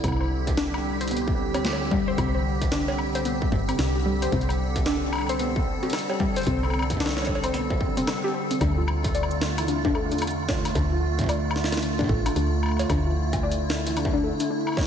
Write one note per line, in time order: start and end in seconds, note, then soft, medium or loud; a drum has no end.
0.00 1.56 C2 loud
0.00 8.57 D3 medium
0.00 8.57 G3 medium
0.00 0.20 C4 medium
0.00 8.57 C4 medium
0.00 4.28 G4 medium
0.00 kick loud
0.00 closed hi-hat soft
0.00 high woodblock soft
0.08 high woodblock soft
0.12 high woodblock soft
0.16 high woodblock soft
0.20 0.27 C5 medium
0.20 high woodblock soft
0.23 high woodblock soft
0.25 high woodblock soft
0.28 high woodblock soft
0.47 kick loud
0.47 closed hi-hat medium
0.57 0.69 D4 loud
0.57 snare loud
0.57 closed hi-hat medium
0.74 high woodblock medium
1.01 1.08 C5 loud
1.01 closed hi-hat medium
1.08 1.18 B3 medium
1.08 closed hi-hat soft
1.11 closed hi-hat soft
1.17 closed hi-hat soft
1.28 kick loud
1.54 2.14 D2 loud
1.54 1.61 C4 medium
1.54 closed hi-hat medium
1.54 cowbell medium
1.54 high woodblock medium
1.65 snare loud
1.65 closed hi-hat soft
1.73 cowbell medium
1.81 1.91 G4 medium
1.91 1.98 G3 loud
1.91 kick loud
2.08 2.15 C5 loud
2.18 3.47 C2 loud
2.18 2.34 C4 medium
2.18 kick loud
2.18 closed hi-hat soft
2.18 high woodblock medium
2.35 2.42 C5 medium
2.62 kick loud
2.62 closed hi-hat medium
2.72 2.83 D4 loud
2.72 snare loud
2.72 closed hi-hat medium
2.88 cowbell medium
2.98 high woodblock soft
3.15 3.22 C5 loud
3.15 closed hi-hat medium
3.25 3.32 B3 medium
3.25 closed hi-hat soft
3.42 kick loud
3.52 3.73 G1 medium
3.52 kick loud
3.69 3.76 C4 medium
3.69 closed hi-hat medium
3.69 high woodblock medium
3.79 4.28 C2 loud
3.79 snare loud
3.79 closed hi-hat soft
3.95 4.05 G4 medium
4.06 4.12 G3 loud
4.22 4.29 C5 loud
4.22 closed hi-hat medium
4.32 5.75 C2 loud
4.32 4.48 C4 medium
4.32 8.57 A4 medium
4.32 kick loud
4.32 closed hi-hat soft
4.41 closed hi-hat soft
4.49 4.56 C5 medium
4.49 closed hi-hat soft
4.49 high woodblock medium
4.76 kick medium
4.76 closed hi-hat medium
4.86 4.97 D4 loud
4.86 snare loud
5.13 high woodblock medium
5.15 high woodblock medium
5.18 high woodblock medium
5.21 high woodblock soft
5.27 5.36 C5 loud
5.27 closed hi-hat medium
5.27 high woodblock soft
5.39 5.46 B3 medium
5.39 closed hi-hat soft
5.56 kick loud
5.83 5.90 C4 medium
5.83 closed hi-hat soft
5.83 cowbell medium
5.90 snare loud
5.90 closed hi-hat soft
5.93 closed hi-hat medium
5.93 high woodblock medium
5.99 closed hi-hat soft
6.10 6.19 G4 medium
6.10 cowbell medium
6.20 6.27 G3 loud
6.20 kick loud
6.36 6.44 C5 loud
6.36 closed hi-hat medium
6.36 closed hi-hat soft
6.38 closed hi-hat medium
6.42 closed hi-hat soft
6.43 closed hi-hat soft
6.45 closed hi-hat soft
6.47 7.90 C2 medium
6.47 6.62 C4 medium
6.47 kick loud
6.47 closed hi-hat medium
6.63 6.70 C5 medium
6.63 high woodblock soft
6.70 high woodblock medium
6.73 high woodblock medium
6.79 high woodblock medium
6.82 high woodblock medium
6.90 kick medium
6.90 closed hi-hat medium
6.97 7.12 D4 loud
6.97 kick medium
6.97 snare loud
6.97 closed hi-hat medium
7.06 snare medium
7.09 snare medium
7.17 snare medium
7.17 snare soft
7.17 cowbell soft
7.22 snare soft
7.22 cowbell medium
7.27 kick medium
7.27 cowbell medium
7.35 cowbell medium
7.44 7.51 C5 loud
7.44 closed hi-hat medium
7.44 high woodblock medium
7.54 7.61 B3 medium
7.54 closed hi-hat medium
7.70 kick loud
7.81 kick loud
7.97 8.04 C4 loud
7.97 closed hi-hat medium
8.07 8.14 C4 medium
8.07 snare loud
8.07 closed hi-hat medium
8.07 high woodblock medium
8.24 8.34 G4 loud
8.34 8.46 C5 medium
8.51 8.58 C4 medium
8.51 closed hi-hat medium
8.61 10.13 D2 loud
8.61 14.87 D3 medium
8.61 14.87 A3 medium
8.61 8.72 D4 medium
8.61 12.86 F4 medium
8.61 kick loud
8.61 closed hi-hat medium
8.61 high woodblock medium
8.78 8.87 F4 medium
8.88 high woodblock medium
9.04 kick loud
9.04 closed hi-hat medium
9.15 9.30 D5 medium
9.15 closed hi-hat medium
9.23 high woodblock medium
9.31 shaker medium
9.41 snare loud
9.58 9.68 E4 medium
9.58 closed hi-hat medium
9.58 high woodblock medium
9.68 9.80 D4 medium
9.68 closed hi-hat medium
9.85 9.89 D4 loud
9.85 kick loud
9.95 10.06 A4 medium
9.95 high woodblock medium
10.11 10.71 E2 loud
10.11 10.16 D4 medium
10.11 closed hi-hat soft
10.11 shaker soft
10.18 10.33 D4 medium
10.18 closed hi-hat soft
10.18 shaker soft
10.22 closed hi-hat medium
10.22 high woodblock medium
10.22 shaker soft
10.27 closed hi-hat medium
10.27 shaker soft
10.31 shaker medium
10.49 kick loud
10.49 snare loud
10.49 cowbell medium
10.65 closed hi-hat medium
10.65 high woodblock medium
10.75 12.05 D2 loud
10.75 10.87 D4 medium
10.75 kick loud
10.75 closed hi-hat medium
10.92 11.01 F4 medium
11.19 kick loud
11.19 closed hi-hat medium
11.21 kick medium
11.24 kick medium
11.26 11.45 D5 medium
11.26 kick medium
11.26 closed hi-hat medium
11.26 high woodblock medium
11.51 high woodblock medium
11.56 snare medium
11.64 snare medium
11.72 11.82 E4 medium
11.72 snare medium
11.72 closed hi-hat medium
11.77 snare loud
11.82 11.94 D4 medium
11.82 closed hi-hat medium
11.99 12.03 D4 loud
11.99 kick loud
11.99 kick medium
12.01 kick loud
12.04 kick medium
12.06 kick medium
12.08 12.30 A1 medium
12.08 12.21 A4 medium
12.08 kick soft
12.09 kick loud
12.26 12.30 D4 medium
12.26 closed hi-hat medium
12.26 high woodblock medium
12.36 12.85 D2 loud
12.36 12.47 D4 medium
12.36 closed hi-hat medium
12.63 high woodblock soft
12.66 high woodblock soft
12.69 high woodblock soft
12.71 high woodblock soft
12.77 closed hi-hat medium
12.77 cowbell medium
12.77 high woodblock soft
12.89 14.33 D2 loud
12.89 13.01 D4 medium
12.89 14.87 E4 medium
12.89 kick loud
12.89 closed hi-hat medium
12.89 high woodblock medium
13.06 13.16 F4 medium
13.33 kick loud
13.33 closed hi-hat medium
13.33 high woodblock medium
13.43 13.59 D5 medium
13.52 closed hi-hat medium
13.70 snare loud
13.70 shaker medium
13.87 13.96 E4 medium
13.87 closed hi-hat medium
13.97 14.08 D4 medium
13.97 closed hi-hat medium
13.97 high woodblock medium
14.05 kick loud
14.13 14.18 D4 loud
14.24 14.35 A4 medium
14.40 14.44 D4 medium
14.40 closed hi-hat medium
14.40 shaker medium
14.50 14.62 D4 medium
14.67 high woodblock soft
14.69 high woodblock soft
14.72 high woodblock soft
14.74 high woodblock soft
14.75 kick loud
14.75 snare medium
14.75 cowbell medium
14.75 high woodblock soft
14.81 snare medium